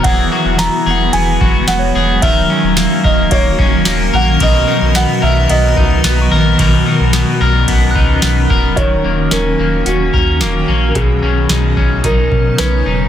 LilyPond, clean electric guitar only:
\new Staff \with { instrumentName = "Clean electric guitar" } { \time 4/4 \key b \major \tempo 4 = 110 <e gis'>8 fis'8 b8 gis'8 b8 fis'8 b8 gis'8 | <dis ais'>8 cis'8 ais8 ais'8 ais8 cis'8 ais8 ais'8 | <b, ais'>8 dis'8 b8 ais'8 b8 dis'8 b8 ais'8 | <b, ais'>8 dis'8 b8 ais'8 b8 dis'8 b8 ais'8 |
dis8 ais8 cis'8 ais8 cis'8 ais'8 ais8 cis'8 | b,8 cis'8 dis'8 cis'8 dis'4 cis'8 dis'8 | }